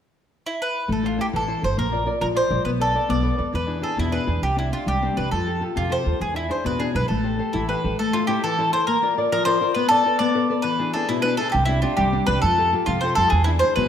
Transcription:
0.47 mandolin E4
0.62 mandolin B4
0.88 upright bass A1, nylon-string guitar A3
0.92 mandolin A4
1.03 nylon-string guitar E4 A4 C5, mandolin F4
1.18 nylon-string guitar E4 A4 C5, mandolin G4
1.33 upright bass A1, nylon-string guitar E3, mandolin A4
1.48 nylon-string guitar E4 A4 C5
1.61 upright bass G1, nylon-string guitar E4 A4 C5, mandolin C5
1.77 upright bass A#1, nylon-string guitar A#3, mandolin A#4
1.92 nylon-string guitar F4 A#4 D5
2.06 nylon-string guitar F4 A#4 D5
2.21 upright bass A#1, nylon-string guitar F3, mandolin A#4
2.35 nylon-string guitar F4 A#4 D5, mandolin C5
2.50 upright bass A#1, nylon-string guitar F4 A#4 D5
2.65 upright bass B1, nylon-string guitar B3, mandolin B4
2.80 nylon-string guitar A4 B4 D5, mandolin A4
2.94 nylon-string guitar A4 B4 D5
3.09 upright bass B1, nylon-string guitar B3, mandolin D5
3.23 nylon-string guitar A4 B4 D5
3.37 upright bass D#2, nylon-string guitar A4 B4 D5
3.53 upright bass E2, nylon-string guitar E3, mandolin B4
3.66 nylon-string guitar D4 E4 G#4
3.81 nylon-string guitar D4 E4 G#4, mandolin A4
3.97 upright bass E2, nylon-string guitar B2, mandolin E4
4.11 nylon-string guitar D4 E4 G#4, mandolin B4
4.26 upright bass E2, nylon-string guitar D4 E4 G#4
4.42 upright bass C2, nylon-string guitar C3, mandolin G4
4.56 nylon-string guitar C4 D4 G4, mandolin E4
4.72 nylon-string guitar C4 D4 G4, mandolin F4
4.86 upright bass C2, nylon-string guitar G3, mandolin G4
5.02 nylon-string guitar C4 D4 G4
5.16 upright bass C2, nylon-string guitar C4 D4 G4, mandolin B4
5.31 upright bass F2, nylon-string guitar F3, mandolin A4
5.46 nylon-string guitar F4 G4 A4
5.61 nylon-string guitar F4 G4 A4
5.76 upright bass F2, nylon-string guitar C3, mandolin F4
5.90 nylon-string guitar F4 G4 A4, mandolin C5
6.04 upright bass D#2, nylon-string guitar F4 G4 A4
6.20 upright bass E2, nylon-string guitar E3, mandolin G#4
6.34 nylon-string guitar D4 E4 G#4, mandolin E4
6.49 nylon-string guitar D4 E4 G#4, mandolin C5
6.64 upright bass E2, nylon-string guitar B2, mandolin B4
6.79 nylon-string guitar D4 E4 G#4, mandolin G#4
6.93 upright bass B1, nylon-string guitar D4 E4 G#4, mandolin B4
7.08 upright bass A1, nylon-string guitar A3, mandolin A4
7.23 nylon-string guitar G4 A4 C5
7.38 nylon-string guitar G4 A4 C5
7.53 upright bass A1, nylon-string guitar E3, mandolin E4
7.68 nylon-string guitar G4 A4 C5, mandolin B4
7.84 upright bass A1, nylon-string guitar G4 A4 C5
7.99 nylon-string guitar A3, mandolin A4
8.13 nylon-string guitar E4 A4 C5, mandolin F4
8.27 nylon-string guitar E4 A4 C5, mandolin G4
8.44 nylon-string guitar E3, mandolin A4
8.58 nylon-string guitar E4 A4 C5
8.73 nylon-string guitar E4 A4 C5, mandolin C5
8.87 nylon-string guitar A#3, mandolin A#4
9.02 nylon-string guitar F4 A#4 D5
9.17 nylon-string guitar F4 A#4 D5
9.32 nylon-string guitar F3, mandolin A#4
9.45 nylon-string guitar F4 A#4 D5, mandolin C5
9.61 nylon-string guitar F4 A#4 D5
9.74 nylon-string guitar B3, mandolin B4
9.89 mandolin A4, nylon-string guitar A4 B4 D5
10.06 nylon-string guitar A4 B4 D5
10.19 nylon-string guitar B3, mandolin D5
10.35 nylon-string guitar A4 B4 D5
10.50 nylon-string guitar A4 B4 D5
10.62 nylon-string guitar E3, mandolin B4
10.79 nylon-string guitar D4 E4 G#4
10.94 nylon-string guitar D4 E4 G#4, mandolin A4
11.09 nylon-string guitar B2, mandolin E4
11.22 nylon-string guitar D4 E4 G#4, mandolin B4
11.37 nylon-string guitar D4 E4 G#4, mandolin A4
11.50 mandolin G4 A4
11.54 upright bass C2, nylon-string guitar C3
11.65 nylon-string guitar C4 D4 G4, mandolin E4
11.82 nylon-string guitar C4 D4 G4, mandolin F4
11.97 upright bass C2, nylon-string guitar G3, mandolin G4
12.12 nylon-string guitar C4 D4 G4
12.26 upright bass C2, nylon-string guitar C4 D4 G4, mandolin B4
12.42 upright bass F2, nylon-string guitar F3, mandolin A4
12.57 nylon-string guitar F4 G4 A4
12.73 nylon-string guitar F4 G4 A4
12.86 upright bass F2, nylon-string guitar C3, mandolin F4
13.01 nylon-string guitar F4 G4 A4, mandolin C5
13.15 upright bass F2, nylon-string guitar F4 G4 A4, mandolin A4
13.30 upright bass E2, nylon-string guitar E3, mandolin G#4
13.44 nylon-string guitar D4 E4, mandolin E4
13.48 nylon-string guitar G#4
13.59 nylon-string guitar D4, mandolin C5
13.63 nylon-string guitar E4 G#4
13.76 upright bass E2, nylon-string guitar B2, mandolin B4

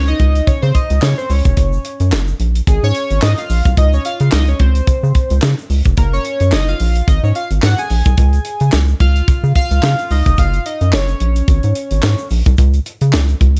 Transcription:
Already playing: analog synth bass C#2
0.07 analog polysynth D#5, shaker
0.19 analog synth bass C#2, kick, closed hi-hat
0.35 closed hi-hat, shaker
0.47 analog synth bass C#3, analog polysynth C#5, kick, closed hi-hat, shaker
0.62 analog synth bass C#3, analog polysynth C5, shaker
0.74 analog polysynth D#5, kick, closed hi-hat, shaker
0.90 analog synth bass C#2, closed hi-hat, shaker
1.02 analog synth bass C#3, analog polysynth C#5, snare, clap, shaker
1.18 analog polysynth C5, shaker
1.30 analog synth bass C#2, analog polysynth C#5, open hi-hat, shaker
1.45 analog synth bass F1, kick, closed hi-hat, shaker
1.57 analog synth bass F#1, kick, closed hi-hat, shaker
1.73 shaker
1.85 closed hi-hat, shaker
2.00 analog synth bass F#2, closed hi-hat, shaker
2.12 analog synth bass F#1, snare, clap, shaker
2.28 shaker
2.40 analog synth bass A#1, closed hi-hat
2.55 closed hi-hat, shaker
2.67 analog synth bass G#1, analog polysynth G#4, kick, closed hi-hat, shaker
2.83 analog synth bass G#2, analog polysynth C#5, shaker
2.95 closed hi-hat, shaker
3.10 analog synth bass G#1, closed hi-hat, shaker
3.22 analog synth bass G#2, analog polysynth D#5, snare, clap, shaker
3.38 analog polysynth F5, closed hi-hat, shaker
3.50 analog synth bass A#1, open hi-hat, shaker
3.65 analog synth bass C2, kick, closed hi-hat, shaker
3.77 analog synth bass C#2, analog polysynth D#5, kick, closed hi-hat, shaker
3.93 analog polysynth C#5, shaker
4.05 analog polysynth F5, closed hi-hat, shaker
4.20 analog synth bass C#3, closed hi-hat, shaker
4.32 analog synth bass C#2, analog polysynth D#5, snare, clap, shaker
4.47 analog polysynth C#5, closed hi-hat, shaker
4.59 analog synth bass C#2, analog polysynth C5, kick, closed hi-hat
4.75 closed hi-hat, shaker
4.87 analog synth bass C#3, kick, closed hi-hat, shaker
5.03 analog synth bass C#3, shaker
5.15 kick, closed hi-hat, shaker
5.30 analog synth bass C#2, closed hi-hat, shaker
5.42 analog synth bass C#3, snare, clap, shaker
5.58 shaker
5.70 analog synth bass C#2, open hi-hat, shaker
5.85 analog synth bass F1, kick, closed hi-hat, shaker
5.97 analog synth bass F#1, analog polysynth A#4, kick, closed hi-hat, shaker
6.13 analog polysynth C#5, shaker
6.25 closed hi-hat, shaker
6.40 analog synth bass F#2, closed hi-hat, shaker
6.52 analog synth bass F#1, analog polysynth D#5, snare, clap, shaker
6.67 analog polysynth F5, closed hi-hat, shaker
6.80 analog synth bass A#1, open hi-hat
6.95 closed hi-hat, shaker
7.08 analog synth bass G#1, analog polysynth D#5, kick, closed hi-hat, shaker
7.23 analog synth bass G#2, analog polysynth C#5, shaker
7.35 analog polysynth F5, closed hi-hat, shaker
7.51 analog synth bass G#1, closed hi-hat, shaker
7.62 analog synth bass G#2, analog polysynth F#5, snare, clap, shaker
7.78 analog polysynth G#5, closed hi-hat, shaker
7.90 analog synth bass A#1, analog polysynth G#5, open hi-hat, shaker
8.05 analog synth bass C2, kick, closed hi-hat, shaker
8.17 analog synth bass C#2, kick, closed hi-hat, shaker
8.33 closed hi-hat, shaker
8.45 closed hi-hat, shaker
8.60 analog synth bass C#3, closed hi-hat, shaker
8.72 analog synth bass C#2, snare, clap, shaker
8.88 shaker
9.00 analog synth bass C#2, analog polysynth F5, kick, closed hi-hat
9.16 closed hi-hat, shaker
9.28 analog synth bass C#3, kick, closed hi-hat, shaker
9.43 analog synth bass C#3, shaker
9.55 analog polysynth F5, kick, closed hi-hat, shaker
9.71 analog synth bass C#2, closed hi-hat, shaker
9.83 analog synth bass C#3, snare, clap, shaker
9.99 closed hi-hat, shaker
10.11 analog synth bass C#2, analog polysynth D#5, open hi-hat, shaker
10.26 analog synth bass F1, kick, closed hi-hat, shaker
10.38 analog synth bass F#1, analog polysynth F5, kick, closed hi-hat, shaker
10.54 closed hi-hat, shaker
10.66 analog polysynth D#5, closed hi-hat, shaker
10.81 analog synth bass F#2, closed hi-hat, shaker
10.93 analog synth bass F#1, analog polysynth C#5, snare, clap, shaker
11.08 closed hi-hat, shaker
11.20 analog synth bass A#1, closed hi-hat
11.36 closed hi-hat, shaker
11.48 analog synth bass G#1, kick, closed hi-hat, shaker
11.63 analog synth bass G#2, closed hi-hat, shaker
11.75 closed hi-hat, shaker
11.91 analog synth bass G#1, closed hi-hat, shaker
12.03 analog synth bass G#2, snare, clap, shaker
12.18 shaker
12.30 analog synth bass A#1, open hi-hat, shaker
12.46 analog synth bass C2, kick, closed hi-hat, shaker
12.58 analog synth bass C#2, kick, closed hi-hat, shaker
12.74 closed hi-hat, shaker
12.86 closed hi-hat, shaker
13.01 analog synth bass C#3, closed hi-hat, shaker
13.13 analog synth bass C#2, snare, clap, shaker
13.29 closed hi-hat, shaker
13.41 analog synth bass C#2, kick, closed hi-hat
13.57 closed hi-hat, shaker

